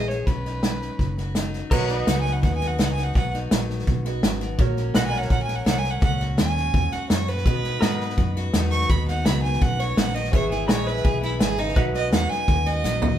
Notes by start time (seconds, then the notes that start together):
Already playing: A#1 E3 B3 E4 G#4
0.08 G#4 C#5, snare
0.26 B1 B2 C#4 B4, kick, snare
0.45 D#4, snare
0.63 F#3, snare, hi-hat pedal
0.81 snare
0.99 F#1 F#2, kick, snare
1.17 F#4, snare
1.35 F#3 D#4, snare, hi-hat pedal
1.53 F#4, snare
1.71 B1 B2 B3 F#4 A#4 B4 C#5 D#5 F#5, kick, snare, crash
1.89 D#4 B4, snare
1.97 D#5
2.07 C#2 F#3 F#5, snare, hi-hat pedal
2.20 G#5
2.25 snare
2.32 F#5
2.43 D#2 F#2 F#5, kick, snare
2.55 G#5
2.61 F#4, snare
2.67 F#5
2.79 C#2 F#3 D#4 F#5, snare, hi-hat pedal
2.92 G#5
2.98 F#4, snare
3.04 F#5
3.15 B1 B3 F#5, kick, snare
3.34 D#4, snare
3.51 A#1 F#3, snare, hi-hat pedal
3.70 snare
3.79 snare
3.87 B1 F#2, kick, snare
4.05 F#4 B4 D#5, snare
4.23 G#1 C#3, snare, hi-hat pedal
4.41 B2, snare
4.58 A#1 A#2 A#3 F#4 A#4 C#5, kick, snare
4.76 C#4, snare
4.95 B1 F#3 B4 D#5 F#5, snare, hi-hat pedal
5.06 G#5
5.13 A#4, snare
5.18 C#5 F#5, snare
5.30 A#1 A#2 F#5, kick, snare
5.42 G#5
5.48 A#4, snare
5.55 F#5
5.66 C2 F#3 C#4 F#5, snare, hi-hat pedal
5.78 G#5
5.84 A#4, snare
5.90 F#5
6.02 C#2 A#2 C#4 F#5, kick, snare
6.20 F#4, snare
6.37 D#2 F#3 G#5, snare, hi-hat pedal
6.56 snare
6.74 E2 A#2, kick, snare
6.92 F#4 F#5, snare
7.10 F#2 G#2 C#5, snare, hi-hat pedal
7.28 A#2 B4, snare
7.37 snare
7.45 B2 B3 F#4 B4 D#5, kick, snare
7.64 D#4, snare
7.81 G#2 F#3 A#4 D#5 F#5, snare, hi-hat pedal
8.00 B4, snare
8.09 snare
8.18 F#2, kick, snare
8.36 F#4, snare
8.54 E2 F#3 D#4, snare, hi-hat pedal
8.71 F#4 C#6, snare
8.80 snare
8.89 D#2 B2 B3 B5, kick, snare
9.08 D#4 F#5, snare
9.25 C#2 F#3 B5, snare, hi-hat pedal
9.43 G#5, snare
9.53 snare
9.61 F#2 F#5, kick, snare
9.79 F#4 C#5, snare
9.97 A#1 C#3 F#5, snare, hi-hat pedal
10.14 D#3 D#5, snare
10.24 snare
10.32 G#1 E3 B3 E4 G#4 B4 C#5 E5, kick, snare
10.51 E4 G#4, snare
10.68 A#1 B3 B4 C#5 D#5 G#5, snare, hi-hat pedal
10.86 B4 E5, snare
10.96 snare
11.04 B1 B2 G#4, kick, snare
11.23 B3 E4, snare
11.40 G#1 D#3 G#4, snare, hi-hat pedal
11.58 C#3 D#4, snare
11.68 snare
11.76 B1 B2 C#4 F#4 B4 D#5 E5 F#5, kick, snare
11.94 D#4 D#5, snare
12.12 E2 F#3 F#5, snare, hi-hat pedal
12.30 G#5, muted fingered electric bass stroke, snare
12.48 D#2 F#2, kick, snare
12.66 F#4 D#5, snare
12.84 A#1 F#3 D#4, snare, hi-hat pedal
13.02 F#4, floor tom